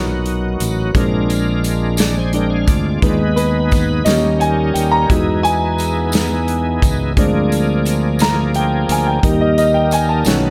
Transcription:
Already playing: fingered electric bass B1, grand piano A#2 C#4 D#4 A#4 B4, tonewheel organ F#3 D#4 F#4
0.26 closed hi-hat
0.60 fingered electric bass A1, closed hi-hat, tambourine
0.95 fingered electric bass A#1, grand piano G#3 C4 D4, tonewheel organ G#3 D4 F4 A#4, kick, closed hi-hat
1.30 closed hi-hat, tambourine
1.64 closed hi-hat, tambourine
1.97 tonewheel organ D5 A#5, snare, closed hi-hat, tambourine
2.17 tonewheel organ C5 G#5
2.33 grand piano G#3 C4 D4, tonewheel organ A#4 G5, closed hi-hat
2.50 tonewheel organ G#4 F5
2.68 fingered electric bass D2, tonewheel organ F4 D5, kick, closed hi-hat, tambourine
2.85 tonewheel organ F4 D5
3.02 fingered electric bass D#2, grand piano G#3 B3 D#4, tonewheel organ G#3 B3 D#4 B4, kick, closed hi-hat
3.36 grand piano B4, closed hi-hat, tambourine
3.71 kick, snare, closed hi-hat, tambourine
4.05 fingered electric bass D#2, grand piano G3 A#3 C#4 D#5, tonewheel organ G3 C#4 D#4 A#4, snare, closed hi-hat, tambourine
4.40 grand piano G#5, closed hi-hat
4.74 fingered electric bass D#2, grand piano G5, closed hi-hat, tambourine
4.91 grand piano A#5
5.10 fingered electric bass E2, tonewheel organ E3 B3 D#4 G#4, grand piano F#3 G#3 D#4, kick, closed hi-hat
5.43 grand piano G#5, closed hi-hat, tambourine
5.78 closed hi-hat, tambourine
6.12 snare, closed hi-hat, tambourine
6.48 closed hi-hat
6.82 fingered electric bass C#2, kick, closed hi-hat, tambourine
7.17 fingered electric bass D2, tonewheel organ F3 A#3 D4 G#4, grand piano G#3 C4 D4, kick, closed hi-hat
7.52 closed hi-hat, tambourine
7.85 closed hi-hat, tambourine
8.19 grand piano A#5, snare, closed hi-hat, tambourine
8.54 grand piano G5, closed hi-hat
8.89 fingered electric bass D2, grand piano G#5, closed hi-hat, tambourine
9.07 grand piano G5
9.22 fingered electric bass D#2, grand piano G3 A#3 D#4, tonewheel organ G3 A#3 D#4 A#4, kick, closed hi-hat
9.41 grand piano D#5
9.58 grand piano D#5, closed hi-hat, tambourine
9.74 grand piano G5
9.91 grand piano G#5, closed hi-hat, tambourine
10.09 grand piano A5
10.25 fingered electric bass B1, grand piano D#3 A3 C#4, tonewheel organ F#3 B3 D#4 A4, snare, closed hi-hat, tambourine

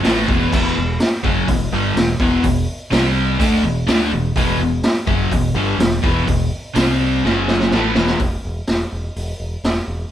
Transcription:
0.03 fingered electric bass A1, overdriven electric guitar A2 E3 A3, snare, open hi-hat
0.17 snare
0.27 fingered electric bass E1, overdriven electric guitar E2 B2 E3, kick
0.52 fingered electric bass E1, overdriven electric guitar E2 B2 E3, kick, crash
0.76 fingered electric bass E1, overdriven electric guitar E2 B2
1.00 snare, open hi-hat
1.23 fingered electric bass F#1, overdriven electric guitar F#2 C#3 F#3, kick
1.48 fingered electric bass E1, overdriven electric guitar E2 B2, kick, open hi-hat
1.72 fingered electric bass G1, overdriven electric guitar G2 D3 G3
1.96 fingered electric bass E1, overdriven electric guitar E2 B2, snare, open hi-hat
2.19 fingered electric bass E1, overdriven electric guitar E2 B2 E3, kick
2.44 fingered electric bass E1, overdriven electric guitar E2 B2, kick, open hi-hat
2.91 fingered electric bass C2, overdriven electric guitar C3 G3 C4, snare, open hi-hat
3.39 fingered electric bass D2, overdriven electric guitar D3 A3 D4, kick, open hi-hat
3.63 fingered electric bass E1, overdriven electric guitar E2 B2
3.87 fingered electric bass D2, overdriven electric guitar D3 A3 D4, snare, open hi-hat
4.12 fingered electric bass E1, overdriven electric guitar E2 B2
4.36 fingered electric bass E1, overdriven electric guitar E2 B2 E3, kick, open hi-hat
4.59 fingered electric bass E1, overdriven electric guitar E2 B2
4.83 snare, open hi-hat
5.07 fingered electric bass F#1, overdriven electric guitar F#2 C#3 F#3, kick
5.31 fingered electric bass E1, overdriven electric guitar E2 B2, kick, open hi-hat
5.54 fingered electric bass G1, overdriven electric guitar G2 D3 G3
5.78 fingered electric bass E1, overdriven electric guitar E2 B2, snare, open hi-hat
6.02 fingered electric bass E1, overdriven electric guitar E2 B2 E3, kick
6.26 fingered electric bass E1, overdriven electric guitar E2 B2, kick, open hi-hat
6.75 fingered electric bass C2, overdriven electric guitar C3 G3 C4, snare, open hi-hat
7.24 fingered electric bass F#1, overdriven electric guitar F#2 C#3 F#3, snare
7.48 snare
7.60 snare
7.71 fingered electric bass A1, overdriven electric guitar A2 E3 A3, snare
7.95 fingered electric bass E1, overdriven electric guitar E2 B2 E3, snare
8.07 snare
8.20 fingered electric bass E1, kick, open hi-hat
8.45 fingered electric bass E1
8.67 fingered electric bass E1, snare, open hi-hat
8.92 fingered electric bass E1
9.16 fingered electric bass E1, open hi-hat
9.40 fingered electric bass E1
9.64 fingered electric bass E1, snare, open hi-hat
9.88 fingered electric bass E1

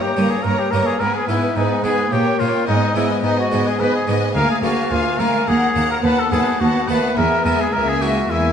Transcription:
Already playing: harpsichord G2, viola section A#3, violin section C#5 A#5
0.02 trumpet G4
0.16 cello section G2, harpsichord G2 A#3 C#4 D#4, viola section A#3, violin section C#5 A#5
0.30 trumpet G#4
0.43 cello section G2, harpsichord G2, viola section A#3, trumpet A#4, violin section C#5 A#5
0.59 trumpet G4
0.71 cello section G2, harpsichord G2 A#3 C#4 D#4, viola section A#3, trumpet A#4, violin section C#5 A#5
0.86 trumpet G#4
0.99 cello section G#2, harpsichord G#2, viola section B3, trumpet A#4, violin section B4 G#5
1.15 trumpet G#4
1.28 cello section G#2, harpsichord G#2 G#3 B3 D#4, viola section B3, trumpet E4, violin section B4 G#5
1.56 cello section G#2, harpsichord G#2, viola section B3, trumpet D#4, violin section B4 G#5
1.84 harpsichord G#2 G#3 B3 D#4, cello section G#2, viola section B3, trumpet G#4, violin section B4 G#5
2.12 cello section A#2, harpsichord A#2, viola section A#3, trumpet G4, violin section C#5 G5
2.39 cello section A#2, harpsichord A#2 A#3 C#4, viola section A#3, trumpet F4, violin section C#5 G5
2.67 harpsichord G#2, cello section G#2, viola section B3, trumpet D#4, violin section D#5 G#5
2.95 cello section G#2, harpsichord G#2 G#3 B3 D#4, viola section B3, trumpet E4, violin section D#5 G#5
3.23 cello section G#2, harpsichord G#2, viola section B3, trumpet D#4, violin section D#5 G#5
3.39 trumpet F#4
3.51 cello section G#2, harpsichord G#2 G#3 B3 D#4, viola section B3, violin section D#5 G#5
3.67 trumpet G#4
3.79 harpsichord G#2, cello section G#2, viola section B3, trumpet B4, violin section D#5 G#5
3.95 trumpet G#4
4.07 cello section G#2, harpsichord G#2 G#3 B3 D#4, viola section B3, violin section D#5 G#5
4.35 cello section D2, harpsichord D2, viola section A#3, trumpet A#4, violin section F5 G#5
4.51 trumpet G#4
4.63 cello section D2, harpsichord D2 G#3 A#3 F4, viola section A#3, trumpet F#4, violin section F5 G#5
4.91 harpsichord D2, cello section D2, viola section A#3, trumpet F4, violin section F5 G#5
5.19 cello section D2, harpsichord D2 G#3 A#3 F4, viola section A#3, trumpet A#4, violin section F5 G#5
5.47 cello section D#2, harpsichord D#2, viola section A#3, trumpet G#4, violin section F#5 A#5
5.75 cello section D#2, harpsichord D#2 A#3 F#4, viola section A#3, violin section F#5 A#5
5.91 trumpet A#4
6.04 harpsichord D#2, cello section D#2, viola section B3, trumpet B4, violin section F#5 A5
6.19 trumpet A4
6.32 cello section D#2, harpsichord D#2 A3 B3 F#4, viola section B3, trumpet G#4, violin section F#5 A5
6.60 cello section D#2, harpsichord D#2, viola section B3, trumpet F#4, violin section F#5 A5
6.88 cello section D#2, harpsichord D#2 A3 B3 F#4, viola section B3, trumpet B4, violin section F#5 A5
7.16 cello section E2, harpsichord E2, viola section B3, trumpet A#4, violin section E5 G#5
7.45 cello section E2, harpsichord E2 G#3 B3 E4, viola section B3, trumpet A#4, violin section E5 G#5
7.60 trumpet G#4
7.73 harpsichord C#2, cello section C#2, viola section A#3, trumpet A#4, violin section E5 G#5
7.88 trumpet G#4
8.02 harpsichord G#3 A#3 E4, trumpet F#4
8.30 cello section E2, harpsichord E2, viola section A#3, trumpet E4, violin section E5 G#5

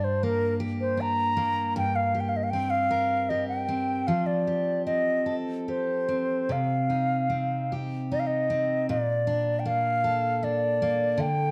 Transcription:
Already playing: steel-string acoustic guitar G2 D4 G4
0.04 flute C5
0.23 steel-string acoustic guitar A#3, flute A#4
0.60 steel-string acoustic guitar G4
0.81 flute C5
0.97 steel-string acoustic guitar D4, flute A#5
1.37 steel-string acoustic guitar A#3
1.76 steel-string acoustic guitar G2, flute G5
1.96 flute F5
2.15 steel-string acoustic guitar G4
2.20 flute G5
2.29 flute F5
2.36 flute D#5
2.43 flute F5
2.50 steel-string acoustic guitar C4, flute G5
2.70 flute F5
2.91 steel-string acoustic guitar A#4
3.29 steel-string acoustic guitar G4, flute D#5
3.48 flute G5
3.69 steel-string acoustic guitar C4
4.07 steel-string acoustic guitar F3, flute F5
4.26 flute D5
4.47 steel-string acoustic guitar G4
4.86 steel-string acoustic guitar C4, flute D#5
5.26 steel-string acoustic guitar A4
5.68 steel-string acoustic guitar G4, flute C5
6.09 steel-string acoustic guitar C4
6.49 steel-string acoustic guitar C3, flute F5
6.90 steel-string acoustic guitar D#4
7.30 steel-string acoustic guitar C4
7.72 steel-string acoustic guitar G4
8.12 steel-string acoustic guitar D#4, flute D#5
8.20 flute F5
8.27 flute D#5
8.50 steel-string acoustic guitar C4
8.89 steel-string acoustic guitar A#2, flute D5
9.27 steel-string acoustic guitar D4
9.59 flute G5
9.65 steel-string acoustic guitar A#3, flute F5
10.04 steel-string acoustic guitar A4
10.43 steel-string acoustic guitar D4, flute D5
10.82 steel-string acoustic guitar A#3
11.18 steel-string acoustic guitar D3, flute G5

